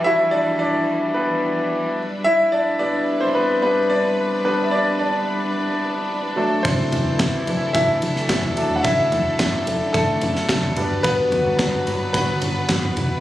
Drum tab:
RD |----------------|----------------|----------------|x-x-x-x-x-x-x-x-|
CP |----------------|----------------|----------------|----x-------x---|
SD |----------------|----------------|----------------|----o------oo---|
FT |----------------|----------------|----------------|--o----------o--|
BD |----------------|----------------|----------------|o---o---o---o---|

RD |x-x-x-x-x-x-x-x-|x-x-x-x-x-x-x-x-|
CP |----x-------x---|----x-------x---|
SD |----o------oo---|----o-------o---|
FT |--o----------o--|--o----------oo-|
BD |o---o---o---o---|o---o---o---o---|